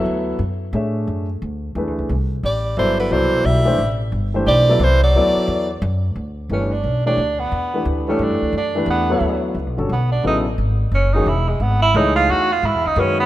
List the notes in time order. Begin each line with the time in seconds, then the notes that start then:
Already playing: F#3 B3 E4 A4 E5
0.05 D2
0.39 F#2
0.73 A2 A3 D4 G#4 C#5 E5
1.07 F#2
1.42 D2
1.75 E2 E3 A3 D4 G#4 B4
1.87 D2
1.99 C#2
2.09 C2
2.43 A1 G3 D5
2.77 G1 E3 F#3 B3 E4 A4 C5 D5
3.00 D3 B4
3.11 C2 B2 E3 F#3 E4 A4 C5 D5
3.44 B1 G3 E5
3.65 E3 A3 D4 G4 C5
3.78 A1
4.12 G1
4.34 E3 A3 D4 G4 C5
4.46 B1 G3 D5
4.69 F#3 B3 E4 A4 D5
4.80 C2 E3 C5
5.03 F#3 D5
5.14 D2 F#3 B3 E4 A4 D5
5.36 muted upright bass stroke
5.48 E2
5.82 F#2
6.16 D2
6.49 G1 E3 A3 C#4 D4 G4 B4
6.72 D4
6.84 B1
7.06 E3 A3 D4 G4 C#5
7.17 D2
7.40 B3
7.52 E2
7.74 E3 A3 D4 G4 B4
7.85 D2
8.08 E3 A3 C#4 D4 G4 A4
8.19 G2 D4
8.30 F#2
8.42 D2
8.53 F#2
8.57 D4
8.75 E3 A3 D4 G4 B4
8.86 E2
8.90 B3
9.10 F#3 B3 E4 A4 C#5
9.20 D2
9.55 C#2
9.66 B1
9.77 G1 D3 G3 C#4 F#4 A4
9.89 B1 B3
10.12 D4
10.24 A1 C#3 F#3 B3 D#4 E4 A4
10.58 G#1
10.92 F#1 C#4
11.13 D#3 G#3 C#4 D#4 F#4 G#4
11.26 E1 E4
11.49 G#3
11.60 G#1 B3
11.82 E4
11.94 C#2 E3 A3 D#4 G#4 C#5
12.16 F4
12.29 E2 F#4
12.52 F4
12.63 G#2 E4
12.75 E2
12.85 C#2 D#4
12.96 F#2 D#3 G#3 C#4 F#4 B4
13.20 B3